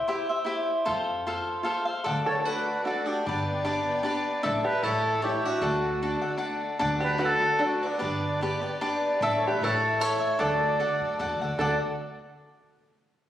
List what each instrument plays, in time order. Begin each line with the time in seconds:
0.08 cavaquinho E4 G4 C5 E5
0.29 cavaquinho G4 C5 E5
0.45 cavaquinho E4 G4 C5 E5
0.85 upright bass F2, cavaquinho F4 A4 C5 F5
1.27 cavaquinho F4 A4 C5 F5
1.63 cavaquinho F4 A4 C5 F5
1.85 cavaquinho A4 C5 F5
2.04 upright bass D2, violin section A3 F#4 D5, cavaquinho D4 A4 D5 F#5
2.26 five-string banjo A4, trumpet C#5
2.38 five-string banjo A4, trumpet C#5
2.45 cavaquinho D4 A4 D5 F#5, five-string banjo F#4, trumpet B4
2.84 cavaquinho D4 A4 D5 F#5, five-string banjo F#4, trumpet A4
3.06 five-string banjo D4, trumpet G4
3.24 upright bass G1, violin section B3 G4 D5, cavaquinho D4 G4
3.28 cavaquinho B4 D5
3.65 cavaquinho D4 G4 B4 D5
4.03 cavaquinho D4 G4 B4 D5
4.41 violin section A3 E4 D5, cavaquinho D4 A4 D5 E5
4.46 upright bass A1
4.64 five-string banjo G4, trumpet B4
4.82 upright bass A1, cavaquinho E4 A4 C#5 E5, five-string banjo E4, violin section E4 C#5, trumpet A4
5.22 cavaquinho E4 A4 C#5 E5, five-string banjo E4, trumpet G4
5.45 five-string banjo D4, trumpet F#4
5.60 upright bass D2, cavaquinho D4 A4 D5 F#5, violin section F#4 D5
6.02 cavaquinho D4 A4 D5 F#5
6.21 cavaquinho A4 D5 F#5
6.37 cavaquinho D4 A4 D5 F#5
6.79 upright bass D2, violin section A3 F#4 D5, cavaquinho D4 A4 D5 F#5
7.00 five-string banjo G4, trumpet B4
7.18 cavaquinho D4 A4 D5 F#5, five-string banjo F#4
7.24 trumpet A4
7.42 cavaquinho A4 D5 F#5
7.59 cavaquinho D4 A4 D5 F#5, five-string banjo D4
7.65 trumpet F#4
7.83 five-string banjo B3
7.87 trumpet D4
7.99 upright bass G1, violin section B3 G4, cavaquinho D4 G4 B4 D5
8.41 cavaquinho D4 G4 B4 D5
8.61 cavaquinho G4 B4 D5
8.81 cavaquinho D4 G4 B4 D5
9.17 upright bass A1, violin section A3 E4 D5
9.22 cavaquinho D4 A4 D5 E5
9.38 five-string banjo A4, trumpet C#5
9.47 five-string banjo G4, trumpet B4
9.57 upright bass A1, violin section C#5
9.63 cavaquinho E4 A4 C#5 E5, five-string banjo E4, trumpet A4
10.00 cavaquinho E4 A4 C#5 E5, five-string banjo A4, trumpet C#5
10.20 cavaquinho A4 C#5 E5
10.38 upright bass D2, cavaquinho D4 A4 D5 F#5, violin section F#4 D5, five-string banjo A4, trumpet D5
10.80 cavaquinho D4 A4 D5 F#5
11.00 upright bass F#2
11.19 upright bass E2, cavaquinho D4 A4 D5 F#5
11.40 upright bass D2, cavaquinho A4 D5 F#5
11.57 upright bass D2, violin section A3 F#4 D5, cavaquinho D4 A4 D5 F#5, five-string banjo A4, trumpet D5